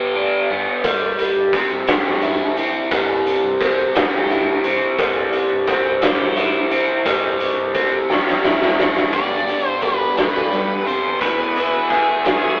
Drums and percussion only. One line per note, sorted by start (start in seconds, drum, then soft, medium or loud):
0.84 kick loud
0.84 closed hi-hat loud
1.18 closed hi-hat medium
1.53 kick medium
1.53 closed hi-hat medium
1.87 snare loud
1.87 closed hi-hat medium
2.22 closed hi-hat medium
2.57 closed hi-hat medium
2.91 kick loud
2.91 closed hi-hat medium
3.26 closed hi-hat medium
3.61 kick medium
3.61 closed hi-hat medium
3.95 snare loud
3.95 closed hi-hat medium
4.30 closed hi-hat medium
4.64 closed hi-hat medium
4.98 kick loud
4.98 closed hi-hat medium
5.33 closed hi-hat medium
5.67 kick medium
5.67 closed hi-hat medium
6.02 snare loud
6.02 closed hi-hat medium
6.36 closed hi-hat medium
6.71 closed hi-hat medium
7.06 kick loud
7.06 closed hi-hat loud
7.40 closed hi-hat medium
7.75 kick medium
7.75 closed hi-hat medium
8.10 snare medium
8.27 snare soft
8.44 snare medium
8.62 snare medium
8.80 snare medium
8.97 snare medium
9.13 kick loud
9.13 closed hi-hat medium
9.48 closed hi-hat medium
9.82 kick medium
9.82 closed hi-hat medium
10.17 snare loud
10.17 closed hi-hat medium
10.52 closed hi-hat medium
10.87 closed hi-hat medium
11.21 kick loud
11.21 closed hi-hat medium
11.56 closed hi-hat medium
11.90 kick medium
11.90 closed hi-hat medium
12.25 snare loud
12.25 closed hi-hat medium